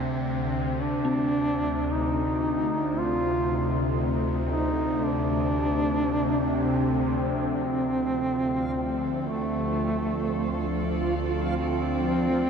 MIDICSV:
0, 0, Header, 1, 6, 480
1, 0, Start_track
1, 0, Tempo, 1052632
1, 1355, Time_signature, 4, 2, 24, 8
1, 5700, End_track
2, 0, Start_track
2, 0, Title_t, "Synth bell"
2, 0, Program_c, 0, 98
2, 0, Control_c, 0, 64, 127
2, 478, Note_on_c, 0, 60, 65
2, 3281, Control_c, 0, 64, 0
2, 3346, Control_c, 0, 64, 127
2, 3360, Note_off_c, 0, 60, 0
2, 4372, Note_on_c, 0, 67, 46
2, 5093, Note_on_c, 0, 69, 49
2, 5186, Note_off_c, 0, 67, 0
2, 5700, Note_off_c, 0, 69, 0
2, 5700, End_track
3, 0, Start_track
3, 0, Title_t, "Cello section"
3, 0, Program_c, 1, 48
3, 3266, Note_on_c, 1, 53, 70
3, 3948, Note_on_c, 1, 69, 71
3, 4049, Note_on_c, 1, 60, 81
3, 4876, Note_on_c, 1, 74, 63
3, 5700, Note_off_c, 1, 53, 0
3, 5700, Note_off_c, 1, 60, 0
3, 5700, Note_off_c, 1, 69, 0
3, 5700, Note_off_c, 1, 74, 0
3, 5700, End_track
4, 0, Start_track
4, 0, Title_t, "Duduk"
4, 0, Program_c, 2, 69
4, 0, Note_on_c, 2, 60, 85
4, 376, Note_on_c, 2, 62, 120
4, 383, Note_off_c, 2, 60, 0
4, 878, Note_on_c, 2, 63, 105
4, 885, Note_off_c, 2, 62, 0
4, 1360, Note_on_c, 2, 65, 122
4, 1367, Note_off_c, 2, 63, 0
4, 1838, Note_off_c, 2, 65, 0
4, 2063, Note_on_c, 2, 63, 107
4, 2304, Note_on_c, 2, 62, 127
4, 2311, Note_off_c, 2, 63, 0
4, 3024, Note_off_c, 2, 62, 0
4, 3027, Note_on_c, 2, 60, 87
4, 3254, Note_off_c, 2, 60, 0
4, 3269, Note_on_c, 2, 60, 115
4, 4199, Note_off_c, 2, 60, 0
4, 4199, Note_on_c, 2, 60, 56
4, 4234, Note_on_c, 2, 57, 108
4, 4241, Note_off_c, 2, 60, 0
4, 5071, Note_off_c, 2, 57, 0
4, 5207, Note_on_c, 2, 60, 122
4, 5700, Note_off_c, 2, 60, 0
4, 5700, End_track
5, 0, Start_track
5, 0, Title_t, "Synth texture"
5, 0, Program_c, 3, 99
5, 3270, Note_on_c, 3, 65, 84
5, 3274, Note_on_c, 3, 53, 81
5, 5700, Note_off_c, 3, 53, 0
5, 5700, Note_off_c, 3, 65, 0
5, 5700, End_track
6, 0, Start_track
6, 0, Title_t, "Synth drone"
6, 0, Program_c, 4, 95
6, 0, Note_on_c, 4, 38, 61
6, 0, Note_on_c, 4, 48, 68
6, 3268, Note_off_c, 4, 38, 0
6, 3273, Note_on_c, 4, 38, 67
6, 3322, Note_off_c, 4, 48, 0
6, 5700, Note_off_c, 4, 38, 0
6, 5700, End_track
0, 0, End_of_file